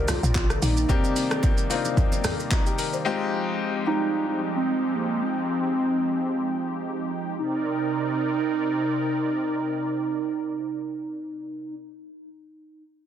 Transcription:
Already playing: C2 C3 D#3 G3 A#3 C4 D4 D#4 F#4 G4 A#4 D5
0.08 F4, cross-stick, open hi-hat, low bongo, low conga, shaker
0.23 A#1, shaker
0.35 F4, kick, clap, high bongo, shaker
0.50 cross-stick, shaker
0.62 A#1 D#4, open hi-hat, shaker
0.77 shaker
0.89 A#3 C4 D4 D#4 G4, kick, low conga, shaker
1.04 shaker
1.16 open hi-hat, shaker
1.31 cross-stick, shaker
1.43 kick, high bongo, shaker
1.58 shaker
1.70 A#3 C4 D4 D#4 F4, open hi-hat, shaker
1.85 low bongo, shaker
1.97 kick, low conga, shaker
2.12 low bongo, shaker
2.24 cross-stick, open hi-hat, low bongo, low conga, shaker
2.40 shaker
2.51 D#4, kick, clap, high bongo, shaker
2.66 G4, shaker
2.78 A#4, open hi-hat, shaker
2.93 C5, shaker
3.05 F3 G#3 C4 D#4 F4 G4
3.86 G3 C4 D#4 F4 G4
3.92 G#3
4.29 D#4
4.56 C4
4.95 A#3
5.22 C4
7.38 C3 C4 D#4 A#4 D5

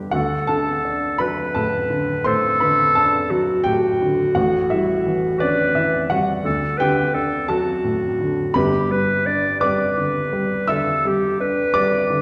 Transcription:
Already playing: D3 G3 B3 D4 A4 B4 A5 B5
0.11 D2 F#4 A4 F#5
0.47 D3 A4 A5
0.85 D4
1.18 F#3 B4 B5
1.55 A2 A4 A5
1.90 D3
2.24 A2 A4 C5 C6
2.60 D3 B4 B5
2.95 D4 A4 A5
3.30 F#3 F#4
3.64 A2 G4 G5
4.02 D3
4.35 A1 A2 F#4 F#5
4.70 G3 E4 E5
5.06 E3
5.39 C#4 D4 B4 D5
5.75 E3 E4 E5
6.10 G3 F#4 F#5
6.44 D2 A4
6.78 D3 G4 B4 G5
7.14 D4 A4
7.48 F#3 F#4 A4 A5
7.84 A2
8.20 D3
8.54 G1 G2 G4 B4 B5
8.91 G3 B4
9.26 D4 D5
9.60 G3 B4 D5 D6
9.97 D3
10.33 G3
10.68 D3 A4 E5 E6
11.05 G3 G4
11.40 D4 B4
11.74 G3 D5 D6
12.10 D3

